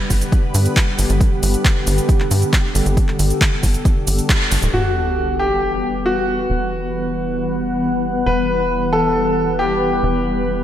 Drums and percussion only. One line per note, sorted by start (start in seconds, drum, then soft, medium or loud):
0.10 kick medium
0.10 open hi-hat medium
0.10 shaker medium
0.21 closed hi-hat medium
0.21 shaker soft
0.32 kick loud
0.32 closed hi-hat medium
0.32 shaker soft
0.55 open hi-hat loud
0.55 shaker medium
0.66 closed hi-hat medium
0.66 shaker soft
0.76 kick loud
0.76 clap loud
0.76 closed hi-hat medium
0.76 shaker soft
0.99 open hi-hat loud
0.99 shaker medium
1.10 closed hi-hat medium
1.10 shaker soft
1.21 kick loud
1.21 closed hi-hat medium
1.21 shaker soft
1.43 open hi-hat loud
1.43 shaker medium
1.54 closed hi-hat medium
1.54 shaker soft
1.65 kick loud
1.65 clap loud
1.65 closed hi-hat medium
1.65 shaker soft
1.87 open hi-hat loud
1.87 shaker medium
1.98 closed hi-hat medium
1.98 shaker soft
2.09 kick loud
2.09 closed hi-hat medium
2.09 shaker soft
2.20 clap soft
2.31 open hi-hat loud
2.31 shaker medium
2.42 closed hi-hat medium
2.42 shaker soft
2.53 kick loud
2.53 clap loud
2.53 closed hi-hat medium
2.53 shaker soft
2.75 open hi-hat loud
2.75 shaker medium
2.86 closed hi-hat medium
2.86 shaker soft
2.97 kick loud
2.97 closed hi-hat medium
2.97 shaker soft
3.08 clap soft
3.19 open hi-hat medium
3.19 shaker medium
3.30 closed hi-hat medium
3.30 shaker soft
3.41 kick loud
3.41 clap loud
3.41 closed hi-hat medium
3.41 shaker soft
3.63 kick medium
3.63 open hi-hat loud
3.63 shaker medium
3.74 closed hi-hat medium
3.74 shaker soft
3.85 kick loud
3.85 closed hi-hat medium
3.85 shaker soft
4.07 open hi-hat loud
4.07 shaker medium
4.19 closed hi-hat medium
4.19 shaker soft
4.29 kick loud
4.29 clap loud
4.29 closed hi-hat medium
4.29 shaker soft
4.51 open hi-hat loud
4.51 shaker medium
4.63 closed hi-hat medium
4.63 shaker soft